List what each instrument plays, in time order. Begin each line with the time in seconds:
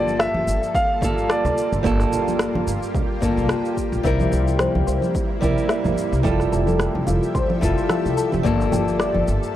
Already playing: upright bass G1, nylon-string guitar G3 A#3 F4 A4, ambient pad G3 A#3 F4 A4, grand piano D5
0.07 high conga, shaker
0.19 grand piano E5, cross-stick, shaker
0.34 upright bass G1, high conga
0.47 upright bass G1, shaker
0.63 shaker
0.75 grand piano F5, kick, shaker
1.01 upright bass G1, nylon-string guitar G3 A#3 F4 A4, kick, shaker
1.18 shaker
1.29 grand piano D5, cross-stick, shaker
1.45 upright bass D2, low conga, shaker
1.58 shaker
1.72 upright bass G1, shaker
1.83 upright bass G1, nylon-string guitar G3 A#3 F4 A4, ambient pad G4, kick, shaker
2.00 cross-stick, shaker
2.12 upright bass G1, low conga, shaker
2.28 high conga, shaker
2.39 cross-stick, shaker
2.55 upright bass G1, high conga
2.67 upright bass G1, shaker
2.83 shaker
2.95 kick, low conga, shaker
3.21 upright bass G1, nylon-string guitar G3 A#3 F4 A4, kick, shaker
3.37 upright bass C2, shaker
3.49 cross-stick, shaker
3.65 shaker
3.77 kick, shaker
3.92 upright bass A#1, shaker
4.03 upright bass C2, ambient pad C3 A#3 E4, nylon-string guitar G3 C4 E4 A#4, synth pluck E5, kick, shaker
4.20 low conga, shaker
4.32 upright bass C2, low conga, shaker
4.47 high conga, shaker
4.59 synth pluck C5, cross-stick, low conga, shaker
4.75 upright bass C2, high conga
4.87 upright bass C2, synth pluck C5, shaker
5.02 low conga, shaker
5.15 kick, shaker
5.41 upright bass C2, nylon-string guitar G3 C4 E4 A#4, synth pluck G4, kick, low conga, shaker
5.58 shaker
5.69 synth pluck E5, cross-stick, shaker
5.84 upright bass G1, low conga, shaker
5.98 shaker
6.13 upright bass C2, shaker
6.23 upright bass F1, ambient pad F3 G4 A4 E5, nylon-string guitar G3 E4 F4 A4, synth pluck A4, kick, low conga, shaker
6.40 cross-stick, shaker
6.52 upright bass F1, synth pluck A4, low conga, shaker
6.67 high conga, low conga, shaker
6.80 cross-stick, shaker
6.95 upright bass F1, high conga
7.07 upright bass F1, synth pluck F4, low conga, shaker
7.23 shaker
7.35 synth pluck C5, kick, low conga, shaker
7.50 low conga
7.61 upright bass F1, nylon-string guitar G3 E4 F4 A4, kick, shaker
7.78 shaker
7.89 synth pluck A4, cross-stick, low conga, shaker
8.05 upright bass C2, shaker
8.17 synth pluck A4, shaker
8.32 upright bass F1, low conga, shaker
8.43 upright bass G1, nylon-string guitar G3 A#3 F4 A4, ambient pad G3 A#3 F4, kick, shaker
8.61 shaker
8.72 upright bass G1, synth pluck G4, low conga, shaker
8.88 high conga, shaker
9.00 synth pluck D5, cross-stick, shaker
9.15 upright bass G1, high conga, low conga
9.28 upright bass G1, shaker
9.43 shaker